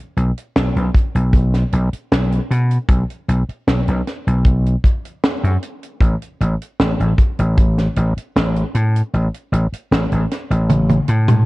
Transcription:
0.17 slap bass B1, closed hi-hat
0.38 closed hi-hat
0.56 slap bass B1, snare, closed hi-hat
0.76 slap bass B1, closed hi-hat
0.95 kick, closed hi-hat
1.15 slap bass B1, closed hi-hat
1.33 kick, closed hi-hat
1.54 snare, closed hi-hat
1.72 slap bass B1, closed hi-hat
1.93 muted slap bass stroke, closed hi-hat
2.12 slap bass B1, snare, closed hi-hat
2.32 closed hi-hat
2.51 slap bass B2, closed hi-hat
2.71 closed hi-hat
2.89 slap bass B1, kick, closed hi-hat
3.10 closed hi-hat
3.28 slap bass B1, closed hi-hat
3.49 muted slap bass stroke, closed hi-hat
3.67 slap bass B1, snare, closed hi-hat
3.88 slap bass B1, closed hi-hat
4.07 snare, closed hi-hat
4.27 slap bass B1, closed hi-hat
4.45 kick, closed hi-hat
4.66 closed hi-hat
4.84 kick, closed hi-hat
5.05 closed hi-hat
5.23 snare, closed hi-hat
5.44 slap bass F#2, closed hi-hat
5.63 closed hi-hat
5.83 closed hi-hat
6.01 slap bass A1, kick, closed hi-hat
6.22 closed hi-hat
6.41 slap bass A1, closed hi-hat
6.62 closed hi-hat
6.80 slap bass A1, snare, closed hi-hat
7.00 slap bass A1, closed hi-hat
7.18 kick, closed hi-hat
7.39 slap bass A1, closed hi-hat
7.58 kick, closed hi-hat
7.78 snare, closed hi-hat
7.96 slap bass A1, closed hi-hat
8.17 muted slap bass stroke, closed hi-hat
8.36 slap bass A1, snare, closed hi-hat
8.56 closed hi-hat
8.75 slap bass A2, closed hi-hat
8.96 closed hi-hat
9.13 slap bass A1, closed hi-hat
9.34 closed hi-hat
9.52 slap bass A1, closed hi-hat
9.72 muted slap bass stroke, closed hi-hat
9.91 slap bass A1, snare, closed hi-hat
10.12 slap bass A1, closed hi-hat
10.31 snare, closed hi-hat
10.50 slap bass A1, closed hi-hat
10.69 closed hi-hat, high tom
10.90 closed hi-hat, high tom
11.08 slap bass A2, closed hi-hat
11.28 closed hi-hat, mid tom

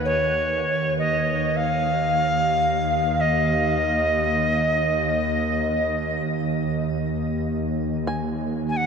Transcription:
Already playing: synth drone D#2
0.05 native american-style wooden flute C#5
0.99 native american-style wooden flute D#5
1.57 native american-style wooden flute F5
3.21 native american-style wooden flute D#5
8.07 five-string banjo G#5
8.69 native american-style wooden flute G#5
8.77 native american-style wooden flute F#5

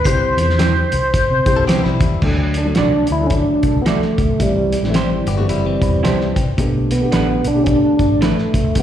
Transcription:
0.05 fingered electric bass C2, upright piano C4 E4 G4, tonewheel organ C5, glockenspiel C7, kick, closed hi-hat
0.37 fingered electric bass E2, closed hi-hat
0.50 snare
0.59 clean electric guitar E4 G4 C5, snare, closed hi-hat
0.92 fingered electric bass C2, closed hi-hat
1.14 kick, closed hi-hat
1.31 fingered electric bass C3
1.46 fingered electric bass C2, upright piano C4 E4 G4, kick, closed hi-hat
1.56 fingered electric bass C2, clean electric guitar C4 A4
1.67 clean electric guitar B3 E4 G4 C5, snare, closed hi-hat
1.84 fingered electric bass B1, clean electric guitar G3 E4, snare
2.01 fingered electric bass D#2, kick, closed hi-hat
2.21 fingered electric bass D2, upright piano F#3 A3 D4 A4, kick, crash
2.54 tonewheel organ D4, closed hi-hat
2.65 upright piano F#3 A3 D4 A4
2.75 fingered electric bass C2, tonewheel organ D4, clean electric guitar F#4 A4 D5, snare, closed hi-hat
3.07 fingered electric bass D2, closed hi-hat
3.12 tonewheel organ E4
3.20 upright piano F#3 A3 D4 A4
3.26 tonewheel organ C#4, closed hi-hat
3.31 tonewheel organ D4, kick
3.63 fingered electric bass B1, kick, closed hi-hat
3.75 fingered electric bass C2
3.81 tonewheel organ B3
3.86 tonewheel organ A3, clean electric guitar F#4 A4 D5, snare, closed hi-hat
4.02 snare
4.18 fingered electric bass D2, kick, closed hi-hat
4.29 fingered electric bass B1
4.39 fingered electric bass C2, upright piano E3 G3 C4 G4, tonewheel organ G3, kick, closed hi-hat
4.72 closed hi-hat
4.83 fingered electric bass A1, upright piano E3 G3 C4 E4, snare
4.90 tonewheel organ A3
4.94 tonewheel organ G3, clean electric guitar E4 G4 C5, snare, closed hi-hat
5.27 fingered electric bass G1, clean electric guitar B3 G4, closed hi-hat
5.38 upright piano E3 G3 C4 G4, clean electric guitar A3 F#4
5.49 fingered electric bass F#1, clean electric guitar G3 E4, closed hi-hat
5.66 clean electric guitar E3 C4
5.82 fingered electric bass E1, upright piano B5, kick, closed hi-hat
6.03 fingered electric bass C2, clean electric guitar E4 G4 C5, upright piano A5, snare, closed hi-hat
6.21 snare
6.36 fingered electric bass C2, upright piano G5, kick, closed hi-hat
6.57 fingered electric bass B1, upright piano D3 A3 B3 G4, kick, closed hi-hat
6.91 tonewheel organ B3, closed hi-hat
7.00 upright piano D3 A3 B3 G4
7.12 fingered electric bass A1, clean electric guitar D4 A4 B4, snare, closed hi-hat
7.44 fingered electric bass B1, tonewheel organ D4, closed hi-hat
7.54 upright piano D3 A3 B3 G4
7.64 tonewheel organ C#4, kick, closed hi-hat
7.69 tonewheel organ D4
7.99 fingered electric bass G1, kick, closed hi-hat
8.10 fingered electric bass A1
8.21 tonewheel organ A3, clean electric guitar D4 A4 B4, snare, closed hi-hat
8.38 snare
8.54 fingered electric bass B1, kick, closed hi-hat
8.64 fingered electric bass C#2
8.75 fingered electric bass C2, upright piano E3 G3 C4 G4, tonewheel organ B3, kick, closed hi-hat

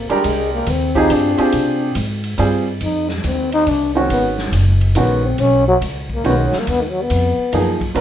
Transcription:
Already playing: trombone A#3
0.09 trombone G3, grand piano G#3 D4 G4 A#4, muted upright bass stroke, ride
0.24 upright bass C2, trombone G#3, ride
0.54 trombone A#3
0.67 upright bass D#2, trombone C4, hi-hat pedal, ride
0.95 grand piano C4 F4 G4 G#4, trombone D#4, kick, ride
1.10 upright bass G2, trombone D4, hi-hat pedal, ride
1.38 grand piano C4 F4 G4 G#4, muted upright bass stroke, ride
1.52 upright bass C3, ride
1.95 upright bass G#2, hi-hat pedal, ride
2.24 ride
2.38 upright bass G2, grand piano G3 C4 F4 G#4, hi-hat pedal, ride
2.81 upright bass F2, trombone D#4, ride
3.09 trombone G3, snare
3.24 upright bass D#2, trombone C4, hi-hat pedal, ride
3.52 trombone D#4, ride
3.67 upright bass C2, trombone D4, ride
3.95 grand piano D#3 G#3 C#4 F#4, trombone C4
4.10 upright bass G#1, trombone B3, ride
4.38 snare
4.52 upright bass F#1, hi-hat pedal, ride
4.81 ride
4.95 upright bass A#1, grand piano D#3 G#3 C#4 F#4, trombone B3, hi-hat pedal, ride
5.25 trombone C4
5.38 upright bass B1, trombone C#4, ride
5.68 trombone F#3
5.81 upright bass C#2, hi-hat pedal, ride
6.10 kick
6.15 trombone A#3
6.24 upright bass B1, grand piano D#3 G#3 C#4 F#4, trombone B3, ride
6.37 trombone D#3
6.46 trombone F#3
6.53 muted upright bass stroke, snare
6.59 trombone A#3
6.67 upright bass D#2, trombone B3, ride
6.81 trombone D#3
6.90 trombone F#3
7.02 trombone B3
7.10 upright bass F2, hi-hat pedal, ride
7.38 muted upright bass stroke
7.52 upright bass F#2, grand piano F3 A#3 D#4 G#4, hi-hat pedal, ride
7.81 kick, ride
7.95 upright bass G#2, grand piano F#3 B3 F4 A#4, ride

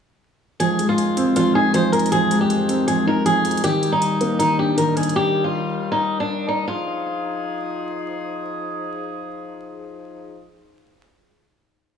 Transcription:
0.60 woodwind section F2 D#3 G#3, grand piano F3, steel-string acoustic guitar G#4, closed hi-hat
0.79 grand piano G#3, closed hi-hat
0.89 steel-string acoustic guitar F4
0.98 closed hi-hat
1.17 grand piano C4, closed hi-hat
1.36 grand piano F3, steel-string acoustic guitar F4, closed hi-hat
1.55 grand piano D#4, steel-string acoustic guitar G#4
1.74 grand piano F3, steel-string acoustic guitar C5, closed hi-hat
1.92 steel-string acoustic guitar A#4, closed hi-hat
1.99 closed hi-hat
2.06 closed hi-hat
2.12 grand piano F3, steel-string acoustic guitar G#4, closed hi-hat
2.31 grand piano G#3, closed hi-hat
2.41 steel-string acoustic guitar G4
2.50 closed hi-hat
2.69 grand piano C4, closed hi-hat
2.88 grand piano F3, steel-string acoustic guitar G#4, closed hi-hat
3.07 grand piano D#4, steel-string acoustic guitar A#4
3.26 grand piano F3, steel-string acoustic guitar G#4, closed hi-hat
3.45 closed hi-hat
3.51 closed hi-hat
3.57 closed hi-hat
3.64 woodwind section D#2 D#3 G3, grand piano D#3, steel-string acoustic guitar G4, closed hi-hat
3.83 grand piano G3, closed hi-hat
3.92 steel-string acoustic guitar D#4
4.02 closed hi-hat
4.21 grand piano A#3, closed hi-hat
4.39 grand piano D#3, steel-string acoustic guitar D#4, closed hi-hat
4.58 grand piano D4, steel-string acoustic guitar G4
4.78 grand piano D#3, steel-string acoustic guitar A#4, closed hi-hat
4.97 steel-string acoustic guitar G#4, closed hi-hat
5.03 closed hi-hat
5.09 closed hi-hat
5.16 steel-string acoustic guitar G4
5.44 steel-string acoustic guitar F4
5.92 steel-string acoustic guitar D#4
6.20 steel-string acoustic guitar D4
6.48 steel-string acoustic guitar D#4
6.68 woodwind section F3 D#4 G#4, steel-string acoustic guitar F4

